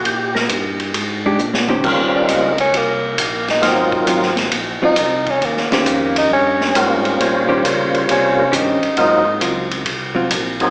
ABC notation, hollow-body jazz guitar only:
X:1
M:4/4
L:1/8
Q:"Swing" 1/4=135
K:Ebmix
V:1 name="Hollow-body jazz guitar"
z4 z [A,=DG] z [E,_DGc] | z8 | z2 [_G,CF] z2 [G,CF] z2 | z [E,DGc]3 z4 |
z [E,DGc] z4 [E,DGc] z | z2 [_G,CF] z2 [G,CF] z2 |]